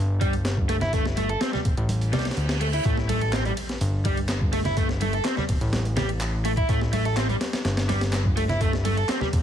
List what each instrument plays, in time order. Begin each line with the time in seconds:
Already playing: analog synth bass G1
0.21 overdriven electric guitar G3, kick, closed hi-hat, high conga
0.33 closed hi-hat
0.45 snare, closed hi-hat
0.57 kick, high conga
0.69 overdriven electric guitar A3, closed hi-hat
0.81 overdriven electric guitar E4, snare, closed hi-hat, low conga
0.93 overdriven electric guitar A3, kick, closed hi-hat
1.05 snare
1.17 overdriven electric guitar A3, closed hi-hat, high conga
1.29 overdriven electric guitar A4, closed hi-hat
1.41 overdriven electric guitar C4, snare, closed hi-hat
1.53 overdriven electric guitar G3, snare, high conga, low conga
1.65 analog synth bass E1, kick, closed hi-hat
1.77 analog synth bass A1, closed hi-hat
1.89 closed hi-hat, reverse cymbal, high conga
2.01 closed hi-hat
2.13 analog synth bass C2, overdriven electric guitar G3, snare, closed hi-hat, low conga
2.19 snare, closed hi-hat
2.25 snare, closed hi-hat
2.31 snare, closed hi-hat
2.37 analog synth bass D2, closed hi-hat
2.49 snare, closed hi-hat
2.61 overdriven electric guitar A3, closed hi-hat
2.73 overdriven electric guitar E4, closed hi-hat
2.85 analog synth bass A1, overdriven electric guitar A3, kick, closed hi-hat, impact
2.97 snare
3.09 overdriven electric guitar A3, closed hi-hat, ride, high conga
3.21 overdriven electric guitar A4, closed hi-hat
3.33 overdriven electric guitar C4, snare, clap, closed hi-hat
3.45 overdriven electric guitar G3, closed hi-hat, high conga
3.57 closed hi-hat, ride
3.69 snare, closed hi-hat
3.81 analog synth bass G1, closed hi-hat
4.05 overdriven electric guitar G3, kick, closed hi-hat, ride, high conga
4.17 closed hi-hat
4.29 snare, clap, closed hi-hat
4.41 kick, high conga
4.53 overdriven electric guitar A3, closed hi-hat, ride
4.65 overdriven electric guitar E4, snare, closed hi-hat, low conga
4.77 overdriven electric guitar A3, kick, closed hi-hat
4.89 snare
5.01 overdriven electric guitar A3, closed hi-hat, ride, high conga
5.13 overdriven electric guitar A4, closed hi-hat
5.25 overdriven electric guitar C4, snare, clap, closed hi-hat
5.37 overdriven electric guitar G3, snare, high conga, low conga
5.49 analog synth bass E1, kick, closed hi-hat, ride
5.61 analog synth bass A1, closed hi-hat
5.73 snare, closed hi-hat, high conga
5.85 closed hi-hat
5.97 overdriven electric guitar G3, snare, closed hi-hat, ride, low conga
6.09 closed hi-hat
6.21 clap, closed hi-hat, ride
6.45 overdriven electric guitar A3, closed hi-hat, ride
6.57 overdriven electric guitar E4, kick, closed hi-hat
6.69 analog synth bass A1, overdriven electric guitar A3, kick, closed hi-hat
6.81 snare
6.93 overdriven electric guitar A3, closed hi-hat, ride, high conga
7.05 overdriven electric guitar A4, closed hi-hat
7.17 overdriven electric guitar C4, snare, clap, closed hi-hat
7.29 overdriven electric guitar G3, closed hi-hat, high conga
7.41 snare, closed hi-hat, ride
7.53 snare, closed hi-hat
7.65 analog synth bass G1, snare, closed hi-hat
7.77 snare, closed hi-hat
7.89 overdriven electric guitar G3, snare, closed hi-hat, ride, high conga
8.01 snare, closed hi-hat
8.13 snare, clap, closed hi-hat
8.25 kick, high conga
8.37 overdriven electric guitar A3, closed hi-hat, ride
8.49 overdriven electric guitar E4, snare, closed hi-hat, low conga
8.61 overdriven electric guitar A3, kick, closed hi-hat
8.73 snare
8.85 overdriven electric guitar A3, closed hi-hat, ride, high conga
8.97 overdriven electric guitar A4, closed hi-hat
9.09 overdriven electric guitar C4, snare, clap, closed hi-hat
9.21 overdriven electric guitar G3, snare, high conga, low conga
9.33 analog synth bass E1, kick, closed hi-hat, ride